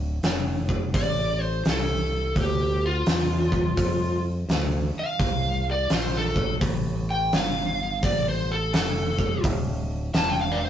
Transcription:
Already playing: D1
0.23 F1, snare, open hi-hat
0.69 kick
0.94 A1 D5, kick, open hi-hat
1.41 C5
1.65 C2 A4, snare, open hi-hat
2.36 D2, kick, open hi-hat
2.41 G4
2.86 F4
3.06 E2, snare, open hi-hat
3.52 kick
3.77 F2, kick, open hi-hat
4.49 D2, snare, open hi-hat
4.94 muted fingered electric bass stroke
4.99 F5
5.19 C2, kick, open hi-hat
5.71 D5
5.90 A#1, snare, open hi-hat
5.94 C5
6.14 A4, snare
6.36 kick
6.61 A1, kick, open hi-hat
7.10 G5
7.33 G1 F5, snare, open hi-hat
8.02 A1 D5, kick, open hi-hat
8.29 C5
8.52 A4
8.73 F1 A4, snare, open hi-hat
9.19 kick
9.44 D1, kick, open hi-hat
10.14 E1 A5, snare, open hi-hat
10.29 G5
10.41 F5
10.52 D5
10.65 C5

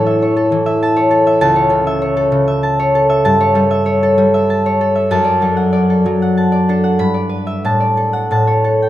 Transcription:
Already playing: A2 E3 A4 C#5 A5
0.06 E5
0.22 C#5
0.36 A4
0.52 E3
0.66 E5
0.83 A5
0.96 C#5
1.11 A4
1.27 E5
1.41 C#2 A5
1.56 C#5
1.70 C#3 A4
1.87 E5
2.02 C#5
2.17 A4
2.32 C#3
2.48 E5
2.63 A5
2.79 C#5
2.95 A4
3.10 E5
3.25 G2 A5
3.40 C#5
3.55 G3 A4
3.71 E5
3.86 C#5
4.03 A4
4.18 G3
4.34 E5
4.50 A5
4.66 C#5
4.81 A4
4.95 E5
5.11 F#2 A5
5.24 D5
5.42 F#3 A4
5.57 F#5
5.73 D5
5.90 A4
6.06 F#3
6.22 F#5
6.37 A5
6.52 D5
6.69 D4 A4
6.84 F#5
6.99 G2 B5
7.14 D5
7.29 B4
7.47 E5
7.65 A2 A5
7.80 D5
7.97 A4
8.13 F#5
8.31 A2 A5
8.47 C#5
8.64 A4
8.82 G5

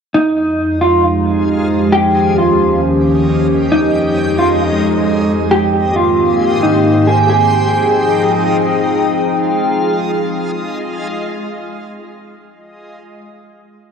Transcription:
0.14 F2 F3 G#3 D#4 F4 G4 D#5
0.81 F4
1.92 D#2 D#3 C#4 G4
2.38 F4
3.72 F2 G#3 D#4 F4
4.39 F4
5.51 G#2 D#3 A#3 C4 G4 C5
5.96 F4
6.63 D#4
7.07 G#4
7.30 F3 G#3 C4 D#4 F4 G#4 D#5 G5

